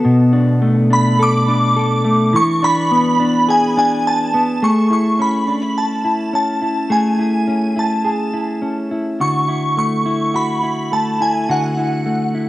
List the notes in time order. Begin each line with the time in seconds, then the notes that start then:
Already playing: B3 F#4 A4
0.05 B2
0.33 D4
0.62 A3
0.90 D4 B5
1.19 A4 D6
1.48 D4
1.76 A4
2.05 A3
2.33 E3 C#6
2.63 D4 B5
2.91 B3
3.20 D4
3.48 G#4 G#5
3.77 D4 G#5
4.07 A5
4.34 B3
4.62 A3 G#4 C#6
4.90 E4 C#6
5.19 C#4 B5
5.47 D4
5.62 E4
5.78 A5
6.04 E4
6.33 C#4 A5
6.62 E4
6.90 A3 G#4 G#5
7.19 E4
7.47 C#4
7.76 E4 A5
8.05 G#4
8.34 E4
8.62 C#4
8.91 E4
9.20 D3 F#4 C#6
9.48 E4
9.77 A3 C#6
10.06 E4
10.34 F#4 B5
10.63 E4
10.92 A3 A5
11.21 E4 G#5
11.49 D3 F#4 F#5
11.77 E4
12.06 A3
12.35 E4